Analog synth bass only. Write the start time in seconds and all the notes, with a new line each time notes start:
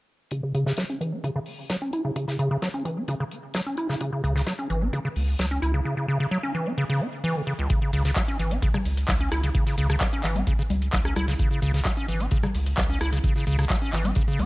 4.24 C#2
4.70 G#1
5.16 C#2
5.39 C#2
5.62 C#2
7.93 C#2
8.39 G#1
8.86 C#2
9.09 C#2
9.32 C#2
9.78 C#2
10.24 G#1
10.70 C#2
10.93 C#2
11.16 C#2
11.62 C#2
12.09 G#1
12.55 C#2
12.78 C#2
13.01 C#2
13.47 C#2
13.93 G#1
14.39 C#2